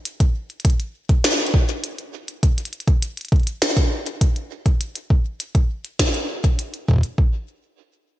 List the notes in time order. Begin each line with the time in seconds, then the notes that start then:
0.05 closed hi-hat
0.20 kick, closed hi-hat
0.50 closed hi-hat
0.60 closed hi-hat
0.65 kick, closed hi-hat
0.80 closed hi-hat
1.09 kick, closed hi-hat
1.24 snare, closed hi-hat
1.47 closed hi-hat
1.54 kick
1.69 closed hi-hat
1.84 closed hi-hat
1.98 closed hi-hat
2.28 closed hi-hat
2.43 kick, closed hi-hat
2.58 closed hi-hat
2.65 closed hi-hat
2.73 closed hi-hat
2.80 closed hi-hat
2.88 kick, closed hi-hat
3.02 closed hi-hat
3.17 closed hi-hat
3.21 closed hi-hat
3.25 closed hi-hat
3.28 kick, closed hi-hat
3.32 closed hi-hat
3.36 closed hi-hat
3.40 closed hi-hat
3.43 closed hi-hat
3.47 closed hi-hat
3.62 snare, closed hi-hat
3.77 kick, closed hi-hat
4.06 closed hi-hat
4.21 kick, closed hi-hat
4.36 closed hi-hat
4.66 kick, closed hi-hat
4.81 closed hi-hat
4.96 closed hi-hat
5.10 kick
5.40 closed hi-hat
5.55 kick, closed hi-hat
5.85 closed hi-hat
5.99 kick, snare, closed hi-hat
6.14 closed hi-hat
6.44 kick, closed hi-hat
6.59 closed hi-hat
6.74 closed hi-hat
6.88 kick
6.91 kick
6.93 kick
6.96 kick
6.98 kick
7.01 kick, closed hi-hat
7.18 kick